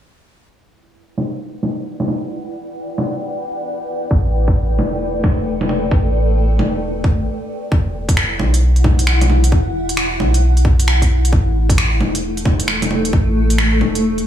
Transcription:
0.50 5.40 E4 medium
0.71 7.27 B4 medium
0.92 4.11 F#5 medium
1.18 7.26 D5 medium
1.18 low bongo medium
1.38 7.27 G5 medium
1.63 low bongo medium
2.00 low bongo medium
2.08 low bongo soft
2.98 low bongo medium
4.11 4.80 A1 medium
4.11 7.27 A3 medium
4.11 kick loud
4.20 7.27 A4 medium
4.48 kick loud
4.79 5.90 E1 medium
4.79 low bongo medium
5.24 kick loud
5.24 low bongo medium
5.61 low bongo medium
5.69 low bongo soft
5.91 6.60 A1 medium
5.91 kick loud
6.59 7.20 E1 medium
6.59 low bongo medium
7.04 kick loud
7.18 7.27 A1 medium
7.72 8.41 E1 medium
7.72 12.67 E4 medium
7.72 kick loud
8.09 kick loud
8.09 closed hi-hat medium
8.13 11.33 F#5 medium
8.13 finger snap loud
8.39 9.51 B1 medium
8.39 low bongo medium
8.54 closed hi-hat medium
8.76 closed hi-hat soft
8.84 kick loud
8.84 low bongo medium
8.99 closed hi-hat medium
9.07 finger snap loud
9.21 closed hi-hat soft
9.21 low bongo medium
9.30 low bongo medium
9.44 closed hi-hat medium
9.52 10.21 E1 medium
9.52 kick loud
9.89 closed hi-hat medium
9.97 finger snap loud
10.20 11.31 B1 medium
10.20 low bongo medium
10.34 closed hi-hat medium
10.57 closed hi-hat soft
10.65 kick loud
10.80 closed hi-hat medium
10.88 finger snap loud
11.02 kick medium
11.02 closed hi-hat soft
11.25 closed hi-hat medium
11.32 12.02 A1 medium
11.32 14.27 A3 medium
11.32 kick loud
11.64 14.27 A4 medium
11.70 kick loud
11.70 closed hi-hat medium
11.78 finger snap loud
12.00 13.12 E1 medium
12.00 low bongo medium
12.15 closed hi-hat medium
12.37 closed hi-hat soft
12.45 kick loud
12.45 low bongo medium
12.60 closed hi-hat medium
12.68 finger snap loud
12.82 closed hi-hat soft
12.82 low bongo medium
12.91 low bongo soft
13.05 closed hi-hat medium
13.13 13.82 A1 medium
13.13 kick loud
13.50 closed hi-hat medium
13.58 finger snap loud
13.81 14.27 E1 medium
13.81 low bongo medium
13.95 closed hi-hat medium
14.18 closed hi-hat soft

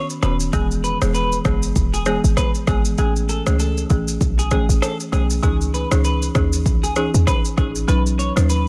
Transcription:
0.10 shaker medium
0.23 0.50 D#1 loud
0.23 0.43 D#3 medium
0.23 0.43 B3 medium
0.23 0.43 C#4 medium
0.23 0.43 F#4 medium
0.23 0.36 B4 medium
0.23 cross-stick medium
0.23 shaker soft
0.40 shaker medium
0.53 0.96 E1 loud
0.53 0.97 E3 medium
0.53 0.98 G#3 medium
0.53 0.98 B3 medium
0.53 0.66 G#4 loud
0.53 0.98 G#4 medium
0.53 kick loud
0.53 shaker medium
0.71 shaker soft
0.84 0.97 B4 medium
0.84 shaker soft
1.02 1.40 E1 medium
1.02 1.18 E3 medium
1.02 1.18 G#3 medium
1.02 1.18 B3 medium
1.02 1.18 G#4 medium
1.02 cross-stick loud
1.02 shaker medium
1.14 1.37 B4 medium
1.14 shaker medium
1.32 shaker soft
1.45 1.72 F#1 medium
1.45 1.65 E3 medium
1.45 1.65 G#3 medium
1.45 1.66 B3 medium
1.45 1.66 G#4 medium
1.45 kick medium
1.45 cross-stick loud
1.45 shaker medium
1.63 shaker loud
1.76 2.18 E1 medium
1.76 kick loud
1.76 shaker medium
1.94 2.03 G#4 medium
1.94 shaker medium
2.06 2.27 E3 medium
2.06 2.27 G#3 medium
2.06 2.27 B3 medium
2.06 2.19 G#4 medium
2.06 2.27 G#4 medium
2.06 cross-stick medium
2.06 shaker medium
2.24 2.36 G#1 loud
2.24 shaker medium
2.37 2.50 B4 medium
2.37 kick medium
2.37 cross-stick medium
2.37 shaker medium
2.55 shaker soft
2.67 2.95 G#1 medium
2.67 2.96 E3 medium
2.67 2.96 G#3 medium
2.67 2.97 B3 medium
2.67 2.81 G#4 medium
2.67 2.97 G#4 medium
2.67 kick medium
2.67 cross-stick medium
2.67 shaker soft
2.85 shaker medium
2.98 3.41 A1 loud
2.98 3.42 E3 medium
2.98 3.43 A3 medium
2.98 3.43 C#4 medium
2.98 3.11 G#4 loud
2.98 3.43 G#4 loud
2.98 shaker medium
3.16 shaker soft
3.29 3.42 A4 medium
3.29 shaker soft
3.47 3.85 C#2 medium
3.47 3.63 E3 medium
3.47 3.63 A3 medium
3.47 3.63 C#4 medium
3.47 3.63 G#4 medium
3.47 cross-stick loud
3.47 shaker medium
3.60 3.82 A4 medium
3.60 shaker medium
3.77 shaker soft
3.90 4.17 A1 medium
3.90 4.10 E3 medium
3.90 4.10 A3 medium
3.90 4.11 C#4 medium
3.90 4.11 G#4 medium
3.90 kick medium
3.90 shaker medium
4.08 shaker loud
4.21 4.63 B1 loud
4.21 kick loud
4.21 shaker medium
4.39 4.48 G#4 medium
4.39 shaker medium
4.51 4.72 E3 medium
4.51 4.72 A3 medium
4.51 4.72 C#4 medium
4.51 4.64 G#4 medium
4.51 4.72 G#4 medium
4.51 kick medium
4.51 cross-stick medium
4.51 shaker medium
4.69 4.80 A1 medium
4.69 shaker medium
4.82 4.95 A4 medium
4.82 cross-stick medium
4.82 shaker medium
5.00 shaker medium
5.12 5.40 B1 medium
5.12 5.41 E3 medium
5.12 5.41 A3 medium
5.12 5.41 C#4 medium
5.12 5.26 G#4 medium
5.12 5.41 G#4 medium
5.12 cross-stick medium
5.12 shaker soft
5.30 shaker medium
5.43 5.86 C#2 loud
5.43 5.87 E3 medium
5.43 5.87 C#4 medium
5.43 5.87 D#4 medium
5.43 5.56 G#4 loud
5.43 5.88 G#4 loud
5.43 kick loud
5.43 shaker medium
5.61 shaker soft
5.74 5.87 B4 medium
5.74 shaker soft
5.91 6.30 C#2 medium
5.91 6.08 E3 medium
5.91 6.08 C#4 medium
5.91 6.08 D#4 medium
5.91 6.08 G#4 medium
5.91 cross-stick loud
5.91 shaker medium
6.04 6.27 B4 medium
6.04 shaker medium
6.22 shaker soft
6.35 6.67 D#2 medium
6.35 6.55 E3 medium
6.35 6.55 C#4 medium
6.35 6.55 D#4 medium
6.35 6.55 G#4 medium
6.35 kick medium
6.35 cross-stick loud
6.35 shaker soft
6.53 shaker loud
6.66 7.08 C#2 loud
6.66 kick loud
6.66 shaker medium
6.83 6.93 G#4 medium
6.83 shaker medium
6.96 7.17 E3 medium
6.96 7.17 C#4 medium
6.96 7.17 D#4 medium
6.96 7.09 G#4 medium
6.96 7.17 G#4 medium
6.96 cross-stick medium
6.96 shaker medium
7.14 7.26 E2 medium
7.14 shaker medium
7.27 7.40 B4 medium
7.27 kick medium
7.27 cross-stick medium
7.27 shaker medium
7.45 shaker medium
7.57 7.85 A1 loud
7.57 7.86 E3 medium
7.57 7.86 C#4 medium
7.57 7.86 D#4 medium
7.57 7.86 G#4 medium
7.57 7.71 G#4 medium
7.57 kick loud
7.57 cross-stick medium
7.57 shaker medium
7.75 shaker medium
7.88 8.31 B1 loud
7.88 8.32 F#3 medium
7.88 8.32 C#4 medium
7.88 8.32 D#4 medium
7.88 8.01 B4 loud
7.88 8.32 B4 loud
7.88 shaker medium
8.06 shaker soft
8.19 8.32 C#5 medium
8.19 shaker soft
8.36 8.68 D#2 medium
8.36 8.53 F#3 medium
8.36 8.53 C#4 medium
8.36 8.53 D#4 medium
8.36 8.53 B4 medium
8.36 cross-stick loud
8.36 shaker medium
8.50 8.68 B4 medium
8.50 shaker medium

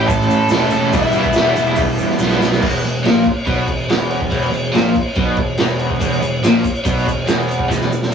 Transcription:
0.00 0.48 E3 loud
0.00 0.50 A3 medium
0.00 0.51 C#4 medium
0.00 0.53 E4 medium
0.00 shaker soft
0.07 0.27 A1 medium
0.07 0.47 A4 loud
0.07 kick loud
0.07 open hi-hat medium
0.07 shaker loud
0.22 shaker soft
0.29 0.48 A2 medium
0.29 shaker medium
0.41 shaker soft
0.49 0.68 E1 medium
0.49 0.92 E3 medium
0.49 0.74 A3 medium
0.49 0.72 C#4 medium
0.49 0.70 A4 loud
0.49 snare loud
0.49 open hi-hat medium
0.49 shaker loud
0.53 0.71 E4 medium
0.70 0.90 E1 loud
0.70 0.92 C#4 medium
0.70 0.97 E4 medium
0.70 0.92 A4 loud
0.70 shaker medium
0.75 0.93 A3 medium
0.93 1.12 E1 medium
0.93 1.33 E3 loud
0.93 1.18 G3 loud
0.93 1.16 B3 loud
0.93 1.74 E4 medium
0.93 kick loud
0.93 open hi-hat medium
0.93 shaker medium
0.97 1.14 E4 loud
1.02 shaker soft
1.12 1.32 E1 medium
1.12 1.37 E4 medium
1.12 shaker medium
1.17 1.34 G3 medium
1.17 1.36 B3 medium
1.24 kick medium
1.24 shaker soft
1.33 1.54 E1 medium
1.33 1.77 E3 loud
1.33 1.58 G3 loud
1.33 1.56 B3 loud
1.33 snare loud
1.33 open hi-hat medium
1.33 shaker loud
1.39 1.55 E4 loud
1.46 shaker soft
1.56 1.75 E1 medium
1.56 2.19 G3 medium
1.56 2.21 B3 medium
1.56 2.22 E4 medium
1.56 shaker medium
1.66 shaker soft
1.75 1.96 E1 loud
1.75 kick loud
1.75 open hi-hat medium
1.75 shaker medium
1.98 2.17 E2 medium
1.98 shaker medium
2.11 snare soft
2.18 2.38 B1 loud
2.18 2.60 E3 medium
2.18 2.44 G3 medium
2.18 2.43 B3 medium
2.18 snare medium
2.18 shaker loud
2.23 2.39 E4 medium
2.29 snare medium
2.29 shaker soft
2.40 2.60 B1 medium
2.40 2.62 B3 medium
2.40 2.61 E4 medium
2.40 snare loud
2.40 shaker medium
2.45 2.63 G3 medium
2.52 snare loud
2.52 shaker soft
2.62 2.82 E1 medium
2.62 2.83 E2 loud
2.62 kick loud
2.62 crash loud
2.62 crash medium
2.84 3.03 E1 medium
2.84 3.02 E2 medium
2.84 crash medium
3.04 3.24 A#1 loud
3.04 3.25 A#2 loud
3.04 snare loud
3.04 crash medium
3.26 kick medium
3.26 crash medium
3.46 3.66 B1 loud
3.46 3.67 B2 loud
3.46 kick loud
3.46 crash medium
3.67 3.88 E1 medium
3.67 3.85 E2 medium
3.67 kick medium
3.67 crash medium
3.89 4.29 E1 loud
3.89 4.29 E2 loud
3.89 snare loud
3.89 crash medium
4.11 crash medium
4.21 kick medium
4.31 4.51 E1 loud
4.31 4.50 E2 loud
4.31 kick loud
4.31 crash medium
4.51 4.72 E1 medium
4.51 4.69 E2 medium
4.51 crash medium
4.73 4.93 A#1 medium
4.73 4.94 A#2 loud
4.73 snare loud
4.73 crash medium
4.95 kick medium
4.95 crash medium
5.16 5.36 B1 loud
5.16 5.37 B2 loud
5.16 kick loud
5.16 crash medium
5.37 5.57 E1 medium
5.37 5.54 E2 medium
5.37 kick loud
5.37 crash medium
5.57 5.98 E1 loud
5.57 5.99 E2 loud
5.57 snare loud
5.57 crash medium
5.79 crash medium
5.90 kick medium
6.00 6.20 E1 loud
6.00 6.21 E2 loud
6.00 kick loud
6.00 crash medium
6.00 shaker medium
6.12 shaker soft
6.22 6.41 E1 medium
6.22 6.39 E2 medium
6.22 crash medium
6.22 shaker medium
6.42 6.62 A#1 medium
6.42 6.64 A#2 loud
6.42 snare loud
6.42 crash medium
6.42 shaker loud
6.64 kick medium
6.64 crash medium
6.64 shaker medium
6.75 shaker soft
6.85 7.05 B1 loud
6.85 7.05 B2 loud
6.85 kick loud
6.85 crash medium
6.85 shaker medium
6.97 shaker soft
7.06 7.26 E1 medium
7.06 7.23 E2 medium
7.06 kick medium
7.06 crash medium
7.06 shaker medium
7.27 7.66 E1 medium
7.27 7.68 E2 loud
7.27 snare loud
7.27 crash medium
7.27 shaker loud
7.41 shaker soft
7.49 crash medium
7.49 shaker medium
7.59 kick medium
7.70 7.89 E1 loud
7.70 7.89 E2 loud
7.70 kick loud
7.70 snare medium
7.70 shaker loud
7.81 snare medium
7.81 shaker soft
7.90 8.10 E1 medium
7.90 8.07 E2 medium
7.90 shaker medium
8.02 snare medium
8.02 shaker soft

